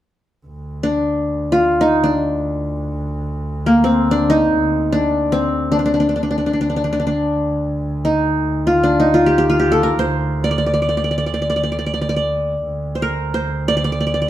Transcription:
0.46 D2
0.83 D4
1.52 F4
1.81 D#4
2.04 D4
3.66 A#3
3.84 C4
4.11 D4
4.30 D#4
4.92 D4
5.32 C4
5.72 D4
5.79 D4
5.86 D4
5.94 D4
6.00 D4
6.09 D4
6.16 D4
6.23 D4
6.31 D4
6.38 D4
6.46 D4
6.53 D2 D4
6.61 D4
6.70 D4
6.76 D4
6.84 D4
6.93 D4
7.00 D4
7.07 D4
8.05 D#4
8.67 F4
8.83 D4
9.00 D#4
9.14 F4
9.26 G4
9.38 G4
9.50 F4
9.59 G4
9.72 A4
9.83 A#4
9.99 C5
10.44 D5
10.51 D5
10.58 D5
10.66 D5
10.74 D5
10.82 D5
10.89 D5
10.97 D5
11.04 D5
11.11 D5
11.18 D5
11.26 D5
11.34 D5
11.42 D5
11.50 D5
11.56 D5
11.63 D5
11.72 D5
11.79 D5
11.86 D5
11.94 D5
12.01 D5
12.09 D5
12.16 D5
12.64 D2
12.95 C5
13.02 A#4
13.34 C5
13.68 D5
13.77 D5
13.84 D5
13.92 D5
14.01 D5
14.07 D5
14.14 D5
14.22 D5

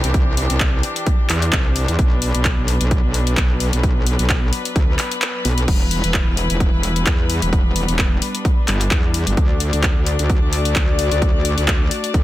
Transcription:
Already playing: E3 C4 D4 G4
0.04 C2, closed hi-hat
0.14 kick, closed hi-hat
0.37 open hi-hat
0.50 C2, closed hi-hat
0.60 kick, clap, closed hi-hat
0.83 open hi-hat
0.96 closed hi-hat
1.06 kick, closed hi-hat
1.30 E2, clap, open hi-hat
1.42 closed hi-hat
1.53 C2, kick, clap, closed hi-hat
1.76 open hi-hat
1.88 E2, closed hi-hat
1.99 B1 F#3 B3 B4, kick, closed hi-hat
2.22 open hi-hat
2.35 B1, closed hi-hat
2.45 kick, clap, closed hi-hat
2.58 B1
2.68 open hi-hat
2.81 B1, closed hi-hat
2.91 kick, closed hi-hat
3.04 B1
3.14 open hi-hat
3.27 closed hi-hat
3.37 B1, kick, clap, closed hi-hat
3.60 open hi-hat
3.73 B1, closed hi-hat
3.83 kick, closed hi-hat
4.07 open hi-hat
4.19 B1, closed hi-hat
4.30 kick, clap, closed hi-hat
4.53 open hi-hat
4.65 closed hi-hat
4.76 D2, kick, closed hi-hat
4.99 clap, open hi-hat
5.12 closed hi-hat
5.22 clap, closed hi-hat
5.45 B1, open hi-hat
5.58 closed hi-hat
5.68 E1 G3 B3 E4, kick, closed hi-hat, crash
5.91 open hi-hat
6.04 E1, closed hi-hat
6.14 kick, clap, closed hi-hat
6.27 E1
6.37 open hi-hat
6.50 E1, closed hi-hat
6.60 kick, closed hi-hat
6.73 E1
6.83 open hi-hat
6.96 closed hi-hat
7.06 E2, kick, clap, closed hi-hat
7.30 open hi-hat
7.42 E1, closed hi-hat
7.53 D4, kick, closed hi-hat
7.76 open hi-hat
7.88 E1, closed hi-hat
7.99 kick, clap, closed hi-hat
8.22 open hi-hat
8.35 closed hi-hat
8.45 kick, closed hi-hat
8.68 G1, clap, open hi-hat
8.81 closed hi-hat
8.91 E2, kick, clap, closed hi-hat
9.14 open hi-hat
9.27 G1, closed hi-hat
9.37 D2 A3 F#4 D5, kick, closed hi-hat
9.60 open hi-hat
9.73 D2, closed hi-hat
9.83 kick, clap, closed hi-hat
9.96 D2
10.06 open hi-hat
10.19 D2, closed hi-hat
10.30 kick, closed hi-hat
10.42 D2
10.53 open hi-hat
10.65 closed hi-hat
10.76 D2, kick, clap, closed hi-hat
10.99 open hi-hat
11.12 D2, closed hi-hat
11.22 kick, closed hi-hat
11.45 open hi-hat
11.58 D2, closed hi-hat
11.68 kick, clap, closed hi-hat
11.91 open hi-hat
12.04 closed hi-hat
12.14 D2, kick, closed hi-hat

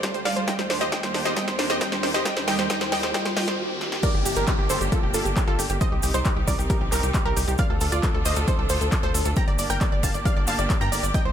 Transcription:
Already playing: D2 D3 F4 A4, riser
0.03 G3 C5, kick, snare, closed hi-hat
0.14 G3 C5, closed hi-hat
0.25 G3 D5 F5, snare, open hi-hat
0.36 G3 C5, closed hi-hat
0.48 D#2 D#3 G3 G4 D#5 G5, kick, snare, closed hi-hat
0.59 G3 C5, snare, closed hi-hat
0.70 D4 C5, snare, open hi-hat
0.81 G4 C5 D#5, snare, closed hi-hat
0.92 G3 D#5 G5, kick, snare, closed hi-hat
1.03 G3 C5, snare, closed hi-hat
1.14 D4 C5, snare, open hi-hat
1.25 G4 C5 D#5, snare, closed hi-hat
1.36 G3 D#5 G5, kick, snare, closed hi-hat
1.48 G3 C5, snare, closed hi-hat
1.59 D4 C5, snare, open hi-hat
1.70 G4 C5 D#5, snare, closed hi-hat
1.81 G3 D#5 G5, kick, snare, closed hi-hat
1.92 G3 C5, snare, closed hi-hat
2.03 D4 C5, snare, open hi-hat
2.14 G4 C5 D#5, snare, closed hi-hat
2.25 D#2 G3 C4 D#5 G5, kick, snare, closed hi-hat
2.37 G3 C5, snare, closed hi-hat
2.48 G3 D#5 G5, snare, open hi-hat
2.59 G3 C5, snare, closed hi-hat
2.70 G3 D#5 G5, kick, snare, closed hi-hat
2.81 G3 C5, snare, closed hi-hat
2.92 G3 D#5 G5, snare, open hi-hat
3.03 G3 C5, snare, closed hi-hat
3.14 G3 D#5 G5, kick, snare, closed hi-hat
3.25 G3 C5, snare, closed hi-hat
3.37 G3 D#5 G5, kick, snare, open hi-hat
3.48 G3 C5, snare, closed hi-hat
3.81 snare
3.92 snare
4.03 A#3 D4 G4 A#4 D5 D6, kick, closed hi-hat, crash, downlifter, cabasa
4.14 G1 G4 G5
4.25 G1 G4 G5, open hi-hat, cabasa
4.36 G1 G4 A#4 A#5, closed hi-hat, cabasa
4.47 G4 G5, kick, clap, closed hi-hat, cabasa
4.59 G1 G4 G5
4.70 G1 A4 C5 C6, open hi-hat, cabasa
4.81 G1 G4 G5, closed hi-hat, cabasa
4.92 F4 A4 A5, kick, closed hi-hat, cabasa
5.03 F1 G4 G5
5.14 G1 F4 A4 A5, open hi-hat, cabasa
5.25 G1 G4 G5, closed hi-hat, cabasa
5.37 G4 G5, kick, clap, closed hi-hat, cabasa
5.48 G1 F4 A4 A5
5.59 G1 G4 G5, open hi-hat, cabasa
5.69 G1 G4 G5, closed hi-hat, cabasa
5.81 C3 C4 D#4 G4 C5 D#5 D#6, kick, closed hi-hat, cabasa
5.92 C2 G4 G5
6.02 C2 G4 G5, open hi-hat, cabasa
6.14 C2 D#4 C5 C6, closed hi-hat, cabasa
6.25 G4 G5, kick, clap, closed hi-hat, cabasa
6.36 C2 G4 G5
6.48 C2 A#4 D5 D6, kick, open hi-hat, cabasa
6.59 C2 G4 G5, closed hi-hat, cabasa
6.70 G4 A#4 A#5, kick, closed hi-hat, cabasa
6.81 A#1 G4 G5
6.92 C2 G4 A#4 A#5, clap, open hi-hat, cabasa
7.03 C2 G4 G5, closed hi-hat, cabasa
7.14 G4 G5, kick, clap, closed hi-hat, cabasa
7.25 C2 G4 A#4 A#5
7.37 C2 G4 G5, open hi-hat, cabasa
7.48 C2 G4 G5, closed hi-hat, cabasa
7.58 D3 D4 F4 A4 D5 F5 F6, kick, closed hi-hat, cabasa
7.70 D2 A4 A5
7.81 D2 A4 A5, open hi-hat, cabasa
7.92 D2 F4 D5 D6, cabasa
8.03 A4 A5, kick, clap, closed hi-hat, cabasa
8.14 D2 A4 A5
8.25 D2 C5 D#5 D#6, open hi-hat, cabasa
8.36 D2 A4 A5, closed hi-hat, cabasa
8.48 A4 C5 C6, kick, closed hi-hat, cabasa
8.59 C2 A4 A5
8.69 D2 A4 C5 C6, open hi-hat, cabasa
8.81 D2 A4 A5, closed hi-hat, cabasa
8.92 A4, kick, clap, closed hi-hat, cabasa
9.03 D2 A4 C5 C6
9.14 D2 A4 A5, open hi-hat, cabasa
9.25 D2 A4 A5, closed hi-hat, cabasa
9.36 A#3 D4 G4 G5 A#5 A#6, kick, closed hi-hat, cabasa
9.48 G1 D5 D6, closed hi-hat
9.58 G1 D5 D6, open hi-hat, cabasa
9.70 G1 A#4 G5 G6, closed hi-hat, cabasa
9.81 D5 D6, kick, clap, closed hi-hat, cabasa
9.92 G1 D5 D6
10.03 G1 F5 A5 A6, kick, open hi-hat, cabasa
10.14 G1 D5 D6, closed hi-hat, cabasa
10.25 D5 F5 F6, kick, closed hi-hat, cabasa
10.37 G1 D5 D6
10.47 G1 F5 A5 A6, clap, open hi-hat, cabasa
10.59 G1 D5 D6, closed hi-hat, cabasa
10.70 D5, kick, clap, closed hi-hat, cabasa
10.81 G2 G5 A#5 A#6
10.92 G1 D5 D6, open hi-hat, cabasa
11.03 G1 D5 D6, closed hi-hat, cabasa
11.14 C3 C4 D#4 D#5 G5 G6, kick, closed hi-hat, cabasa
11.25 C2 C5 C6

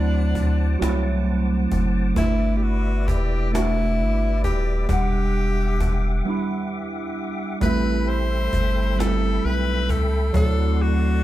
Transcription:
Already playing: D2 F#3 A3 C4 D4 E4 C5 F#5 A5 D6
0.35 cajon bass
0.79 C2 F#3 A3 C4, cajon slap
0.84 E4
1.72 F#1, cajon bass
2.15 G1 A3 B3 D4 E4 B4 D5 E5, cajon bass
2.20 E4
2.57 G4
2.63 F#4
3.07 E1 G4, cajon bass
3.51 A3 B3 D4 E4, cajon slap
3.56 F#4
4.00 G1
4.44 D#1 G4, cajon bass
4.88 E1 G3 B3 D4 G4 F#5 D6, cajon bass
4.93 F#5
5.81 cajon bass
6.25 G3 B3 D4
6.30 E4
7.61 A1 G3 A3 C4 A4 B4 E5 G5 B5, cajon bass
7.65 E4
8.08 C5
8.53 G1, cajon bass
8.96 G3 B3 C4 A4
9.00 E4, cajon slap
9.45 B1 B4
9.89 C#2 A4, cajon bass
10.33 D2 F#3 A3 C4 A4 D5 F#5 C6, cajon bass
10.38 E4
10.82 F#4

